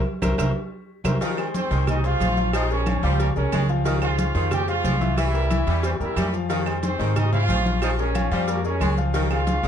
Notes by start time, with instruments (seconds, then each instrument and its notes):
0.22 upright bass C2, grand piano A#4 C5 E5, cowbell, high conga, high timbale, claves, maracas
0.38 upright bass C2, grand piano A#4 C5 E5, cowbell, high conga, high timbale, claves, maracas
1.04 upright bass C2, grand piano A#4 C5 E5, cowbell, high conga, high timbale, claves, maracas
1.21 saxophone section D#3, grand piano F3 F4 F5, cowbell, high conga, low agogo, maracas
1.37 grand piano G#3 G#4 C5, high conga, low agogo, claves, maracas
1.54 trumpet section C4 C5, cowbell, high conga, low timbale, maracas
1.70 upright bass C2, saxophone section D#3, grand piano G#3 G#4 C5, cowbell, high conga, maracas
1.87 trumpet section D#4 D#5, cowbell, high conga, low conga, low agogo, claves, maracas
2.04 grand piano G#3 G#4 C5, trumpet section F4 F5, cowbell, high conga, maracas
2.20 upright bass A#1, saxophone section F3, cowbell, high conga, low timbale, low agogo, maracas
2.37 grand piano F3 F4 F5, cowbell, high conga, maracas
2.53 saxophone section F3, trumpet section D#4 D#5, cowbell, low agogo, claves, maracas
2.70 grand piano G#3 G#4 A#4, trumpet section C#4 C#5, high conga, maracas
2.86 grand piano F3 F4 F5, cowbell, high conga, low timbale, low agogo, claves, maracas
3.03 upright bass C#2, grand piano F3 F4 F5, saxophone section G3, trumpet section C4 C5, cowbell, high conga, low agogo, maracas
3.20 trumpet section A#3 A#4, cowbell, high conga, low agogo, maracas
3.36 upright bass C2, grand piano G#3 G#4 A#4, trumpet section C#4 C#5, high conga, maracas
3.52 upright bass C#2, saxophone section G#3, cowbell, high conga, low timbale, low agogo, claves, maracas
3.69 grand piano F3 F4 F5, high conga, maracas
3.85 saxophone section D#3, grand piano F3 F4 F5, cowbell, high conga, low agogo, maracas
4.02 grand piano G#3 G#4 C5, trumpet section F4 F5, high conga, low agogo, claves, maracas
4.19 cowbell, high conga, low timbale, maracas
4.34 upright bass F2, saxophone section D#3, grand piano G#3 G#4 C5, cowbell, high conga, maracas
4.51 trumpet section G4 G5, cowbell, high conga, low conga, low agogo, claves, maracas
4.68 grand piano G#3 G#4 C5, trumpet section F4 F5, cowbell, high conga, maracas
4.84 upright bass C2, saxophone section F3, cowbell, high conga, low timbale, low agogo, maracas
5.00 grand piano E3 E4 E5, cowbell, high conga, maracas
5.17 saxophone section E3, trumpet section E4 E5, cowbell, high conga, low agogo, claves, maracas
5.34 grand piano G3 G4 A#4, high conga, maracas
5.50 grand piano E3 E4 E5, cowbell, high conga, low timbale, low agogo, claves, maracas
5.67 upright bass E2, grand piano E3 E4 E5, saxophone section G3, cowbell, high conga, low agogo, maracas
5.83 trumpet section C4 C5, cowbell, high conga, low agogo, maracas
6.00 upright bass E2, grand piano G3 G4 A#4, trumpet section E4 E5, high conga, maracas
6.16 upright bass F2, saxophone section G3, cowbell, high conga, low timbale, low agogo, claves, maracas
6.33 grand piano F3 F4 F5, high conga, maracas
6.49 saxophone section D#3, grand piano F3 F4 F5, cowbell, high conga, low agogo, maracas
6.66 grand piano G#3 G#4 C5, high conga, low agogo, claves, maracas
6.83 trumpet section C4 C5, cowbell, high conga, low timbale, maracas
6.99 upright bass G#2, saxophone section D#3, grand piano G#3 G#4 C5, cowbell, high conga, maracas
7.16 trumpet section D#4 D#5, cowbell, high conga, low conga, low agogo, claves, maracas
7.33 grand piano G#3 G#4 C5, trumpet section F4 F5, cowbell, high conga, low conga, maracas
7.49 upright bass A#1, saxophone section F3, cowbell, high conga, low timbale, low agogo, maracas
7.65 grand piano F3 F4 F5, cowbell, high conga, maracas
7.82 saxophone section F3, trumpet section D#4 D#5, cowbell, low agogo, claves, maracas
7.99 grand piano G#3 G#4 A#4, trumpet section C#4 C#5, high conga, maracas
8.15 grand piano F3 F4 F5, cowbell, high conga, low timbale, low agogo, claves, maracas
8.31 upright bass F2, grand piano F3 F4 F5, saxophone section G3, trumpet section C4 C5, cowbell, high conga, low agogo, maracas
8.48 trumpet section A#3 A#4, cowbell, high conga, low agogo, maracas
8.64 grand piano G#3 G#4 A#4, trumpet section C#4 C#5, high conga, maracas
8.80 upright bass C#2, saxophone section G#3, cowbell, high conga, low timbale, low agogo, claves, maracas
8.98 grand piano F3 F4 F5, high conga, maracas
9.14 saxophone section D#3, grand piano F3 F4 F5, cowbell, low agogo, maracas
9.31 grand piano G#3 G#4 C5, trumpet section F4 F5, high conga, low agogo, claves, maracas
9.47 cowbell, high conga, low timbale, maracas
9.63 upright bass G#1, saxophone section D#3, grand piano G#3 G#4 C5, cowbell, high conga, maracas